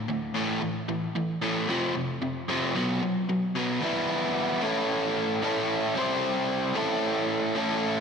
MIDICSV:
0, 0, Header, 1, 2, 480
1, 0, Start_track
1, 0, Tempo, 533333
1, 1524, Time_signature, 4, 2, 24, 8
1, 7202, End_track
2, 0, Start_track
2, 0, Title_t, "Overdriven electric guitar"
2, 0, Program_c, 0, 29
2, 74, Note_on_c, 0, 38, 68
2, 79, Note_on_c, 0, 45, 69
2, 294, Note_off_c, 0, 38, 0
2, 296, Note_off_c, 0, 45, 0
2, 307, Note_on_c, 0, 45, 82
2, 313, Note_on_c, 0, 52, 80
2, 320, Note_on_c, 0, 57, 83
2, 540, Note_off_c, 0, 45, 0
2, 544, Note_off_c, 0, 52, 0
2, 547, Note_off_c, 0, 57, 0
2, 550, Note_on_c, 0, 45, 62
2, 555, Note_on_c, 0, 52, 71
2, 773, Note_off_c, 0, 45, 0
2, 775, Note_off_c, 0, 52, 0
2, 795, Note_on_c, 0, 45, 60
2, 801, Note_on_c, 0, 52, 74
2, 1015, Note_off_c, 0, 45, 0
2, 1018, Note_off_c, 0, 52, 0
2, 1041, Note_on_c, 0, 45, 69
2, 1045, Note_on_c, 0, 52, 71
2, 1258, Note_off_c, 0, 45, 0
2, 1260, Note_off_c, 0, 52, 0
2, 1275, Note_on_c, 0, 45, 85
2, 1281, Note_on_c, 0, 52, 87
2, 1284, Note_on_c, 0, 57, 80
2, 1505, Note_off_c, 0, 45, 0
2, 1508, Note_off_c, 0, 52, 0
2, 1509, Note_off_c, 0, 57, 0
2, 1512, Note_on_c, 0, 41, 79
2, 1520, Note_on_c, 0, 48, 78
2, 1525, Note_on_c, 0, 53, 90
2, 1743, Note_off_c, 0, 41, 0
2, 1745, Note_off_c, 0, 48, 0
2, 1750, Note_off_c, 0, 53, 0
2, 1755, Note_on_c, 0, 41, 62
2, 1755, Note_on_c, 0, 48, 67
2, 1975, Note_off_c, 0, 41, 0
2, 1976, Note_off_c, 0, 48, 0
2, 1998, Note_on_c, 0, 41, 59
2, 1999, Note_on_c, 0, 48, 75
2, 2217, Note_off_c, 0, 41, 0
2, 2218, Note_off_c, 0, 48, 0
2, 2236, Note_on_c, 0, 41, 82
2, 2247, Note_on_c, 0, 48, 83
2, 2249, Note_on_c, 0, 53, 81
2, 2465, Note_off_c, 0, 41, 0
2, 2471, Note_off_c, 0, 48, 0
2, 2472, Note_off_c, 0, 53, 0
2, 2479, Note_on_c, 0, 47, 79
2, 2485, Note_on_c, 0, 54, 79
2, 2490, Note_on_c, 0, 59, 85
2, 2707, Note_off_c, 0, 47, 0
2, 2710, Note_off_c, 0, 54, 0
2, 2713, Note_off_c, 0, 59, 0
2, 2721, Note_on_c, 0, 47, 60
2, 2723, Note_on_c, 0, 54, 78
2, 2938, Note_off_c, 0, 47, 0
2, 2940, Note_off_c, 0, 54, 0
2, 2960, Note_on_c, 0, 47, 64
2, 2962, Note_on_c, 0, 54, 70
2, 3178, Note_off_c, 0, 47, 0
2, 3179, Note_off_c, 0, 54, 0
2, 3195, Note_on_c, 0, 47, 82
2, 3200, Note_on_c, 0, 54, 84
2, 3205, Note_on_c, 0, 59, 86
2, 3423, Note_off_c, 0, 47, 0
2, 3426, Note_on_c, 0, 40, 78
2, 3428, Note_off_c, 0, 54, 0
2, 3430, Note_off_c, 0, 59, 0
2, 3435, Note_on_c, 0, 47, 90
2, 3444, Note_on_c, 0, 52, 88
2, 3446, Note_on_c, 0, 55, 92
2, 3455, Note_on_c, 0, 59, 92
2, 3457, Note_on_c, 0, 64, 83
2, 4140, Note_off_c, 0, 40, 0
2, 4145, Note_off_c, 0, 47, 0
2, 4147, Note_on_c, 0, 45, 80
2, 4150, Note_off_c, 0, 55, 0
2, 4153, Note_off_c, 0, 52, 0
2, 4153, Note_on_c, 0, 52, 72
2, 4155, Note_off_c, 0, 59, 0
2, 4160, Note_on_c, 0, 57, 80
2, 4169, Note_on_c, 0, 61, 86
2, 4176, Note_off_c, 0, 64, 0
2, 4176, Note_on_c, 0, 64, 77
2, 4183, Note_on_c, 0, 69, 89
2, 4860, Note_off_c, 0, 45, 0
2, 4867, Note_off_c, 0, 57, 0
2, 4871, Note_off_c, 0, 61, 0
2, 4877, Note_on_c, 0, 45, 72
2, 4878, Note_off_c, 0, 69, 0
2, 4881, Note_off_c, 0, 52, 0
2, 4885, Note_on_c, 0, 52, 75
2, 4892, Note_on_c, 0, 57, 68
2, 4896, Note_on_c, 0, 61, 73
2, 4901, Note_off_c, 0, 64, 0
2, 4904, Note_on_c, 0, 64, 72
2, 4909, Note_on_c, 0, 69, 80
2, 5345, Note_off_c, 0, 45, 0
2, 5350, Note_on_c, 0, 48, 81
2, 5352, Note_off_c, 0, 57, 0
2, 5355, Note_off_c, 0, 61, 0
2, 5359, Note_off_c, 0, 52, 0
2, 5361, Note_off_c, 0, 69, 0
2, 5362, Note_on_c, 0, 55, 94
2, 5364, Note_on_c, 0, 60, 89
2, 5373, Note_off_c, 0, 64, 0
2, 5373, Note_on_c, 0, 64, 92
2, 5377, Note_on_c, 0, 67, 92
2, 5384, Note_on_c, 0, 72, 99
2, 6061, Note_off_c, 0, 48, 0
2, 6064, Note_on_c, 0, 45, 75
2, 6067, Note_off_c, 0, 55, 0
2, 6068, Note_off_c, 0, 60, 0
2, 6073, Note_on_c, 0, 52, 87
2, 6075, Note_off_c, 0, 67, 0
2, 6078, Note_off_c, 0, 72, 0
2, 6079, Note_on_c, 0, 57, 86
2, 6084, Note_off_c, 0, 64, 0
2, 6087, Note_on_c, 0, 61, 81
2, 6094, Note_on_c, 0, 64, 89
2, 6097, Note_on_c, 0, 69, 91
2, 6778, Note_off_c, 0, 45, 0
2, 6785, Note_off_c, 0, 57, 0
2, 6789, Note_off_c, 0, 61, 0
2, 6791, Note_on_c, 0, 45, 79
2, 6794, Note_off_c, 0, 69, 0
2, 6799, Note_off_c, 0, 52, 0
2, 6802, Note_on_c, 0, 52, 77
2, 6806, Note_on_c, 0, 57, 74
2, 6813, Note_on_c, 0, 61, 77
2, 6815, Note_off_c, 0, 64, 0
2, 6818, Note_on_c, 0, 64, 73
2, 6825, Note_on_c, 0, 69, 84
2, 7202, Note_off_c, 0, 45, 0
2, 7202, Note_off_c, 0, 52, 0
2, 7202, Note_off_c, 0, 57, 0
2, 7202, Note_off_c, 0, 61, 0
2, 7202, Note_off_c, 0, 64, 0
2, 7202, Note_off_c, 0, 69, 0
2, 7202, End_track
0, 0, End_of_file